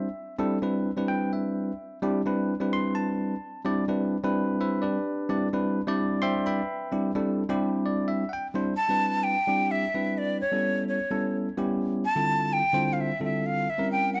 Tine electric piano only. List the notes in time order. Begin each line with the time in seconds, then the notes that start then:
Already playing: E5
0.38 G3 C4 D4 E4 A4
0.62 G3 C4 D4 E4 B4
0.97 G3 C4 D4 E4 B4
1.08 G5
1.33 E5
2.02 G3 C4 D4 E4 G4
2.25 G3 C4 D4 E4 B4
2.60 G3 C4 D4 E4 B4
2.73 C6
2.95 A5
3.65 G3 C4 D4 E4 D5
3.88 G3 C4 D4 E4 B4
4.24 G3 C4 D4 E4 B4
4.61 E4 B4 C5 E5
4.82 D4 G4 B4 D5
5.29 G3 C4 D4 E4 D5
5.53 G3 C4 D4 E4 B4
5.87 G3 C4 D4 E4 D5
6.22 C5 E5 G5 C6
6.46 B4 E5 G5 B5
6.92 G3 C4 D4 E4 G4
7.15 G3 C4 D4 E4 A4
7.49 G3 C4 D4 E4 G4
7.86 D5
8.08 E5
8.29 F#5
8.33 G5
8.54 G3 C4 D4 E4 C5
8.89 G3 C4 D4 E4 B4
9.47 G3 C4 D4 E4 G4
9.94 G3 C4 D4 E4 B4
10.52 G3 B3 C#4 E4 A4
11.10 G3 B3 C#4 E4 A4
11.57 G3 B3 C#4 E4 G4
12.15 D3 G3 C4 E4 F4 A4
12.73 D3 G3 C4 E4 F4 C5
13.20 D3 G3 C4 E4 F4 A4
13.78 G3 C4 C#4 E4 A#4